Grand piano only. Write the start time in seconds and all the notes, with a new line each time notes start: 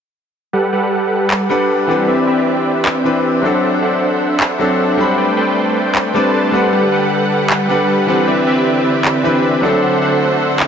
1.49 G3 D4 B4 F#5
1.87 E3 C4 D4
1.91 B4
3.04 E3 C4 D4 B4
3.42 F#3 C4 D4 A4
4.59 F#3 C4 D4 A4
4.96 G3 C4 D4
5.00 B5
6.14 G3 C4 D4 B4
6.51 G3 D4 B4 F#5
7.68 G3 D4 B4 F#5
8.06 E3 C4 D4 B4
9.23 E3 C4 D4 B4
9.61 F#3 C4 D4 A4